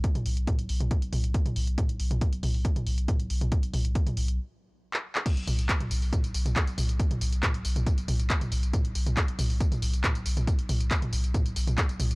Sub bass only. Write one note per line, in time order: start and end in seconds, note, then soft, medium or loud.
0.15 0.25 B1 medium
0.26 0.36 B1 loud
0.37 0.47 B1 medium
0.59 0.69 B1 medium
0.69 0.80 B1 loud
0.80 0.91 B1 medium
1.02 1.12 B1 medium
1.13 1.23 B1 loud
1.24 1.34 B1 medium
1.46 1.55 B1 medium
1.56 1.67 B1 loud
1.67 1.78 B1 medium
1.89 1.99 B1 medium
2.00 2.10 B1 loud
2.11 2.21 B1 medium
2.33 2.43 B1 medium
2.43 2.54 B1 loud
2.54 2.65 B1 medium
2.76 2.86 B1 medium
2.87 2.97 B1 loud
2.98 3.08 B1 medium
3.20 3.29 B1 medium
3.30 3.41 B1 loud
3.41 3.52 B1 medium
3.63 3.73 B1 medium
3.74 3.84 B1 loud
3.85 3.95 B1 medium
4.07 4.16 B1 medium
4.17 4.28 B1 loud
4.28 4.39 B1 medium
5.37 5.47 B1 medium
5.47 5.58 B1 loud
5.59 5.69 B1 medium
5.80 5.90 B1 medium
5.91 6.02 B1 loud
6.02 6.12 B1 medium
6.24 6.34 B1 medium
6.34 6.45 B1 loud
6.46 6.56 B1 medium
6.67 6.77 B1 medium
6.78 6.89 B1 loud
6.89 6.99 B1 medium
7.11 7.21 B1 medium
7.21 7.32 B1 loud
7.33 7.43 B1 medium
7.54 7.64 B1 medium
7.65 7.75 B1 loud
7.76 7.86 B1 medium
7.98 8.08 B1 medium
8.08 8.19 B1 loud
8.20 8.30 B1 medium
8.41 8.51 B1 medium
8.52 8.62 B1 loud
8.63 8.73 B1 medium
8.85 8.95 B1 medium
8.95 9.06 B1 loud
9.06 9.17 B1 medium
9.28 9.38 B1 medium
9.39 9.49 B1 loud
9.50 9.60 B1 medium
9.72 9.82 B1 medium
9.82 9.93 B1 loud
9.93 10.04 B1 medium
10.15 10.25 B1 medium
10.26 10.36 B1 loud
10.37 10.47 B1 medium
10.59 10.69 B1 medium
10.69 10.80 B1 loud
10.80 10.91 B1 medium
11.02 11.12 B1 medium
11.13 11.23 B1 loud
11.24 11.34 B1 medium
11.46 11.56 B1 medium
11.56 11.67 B1 loud
11.67 11.78 B1 medium
11.89 11.99 B1 medium
12.00 12.10 B1 loud
12.11 12.15 B1 medium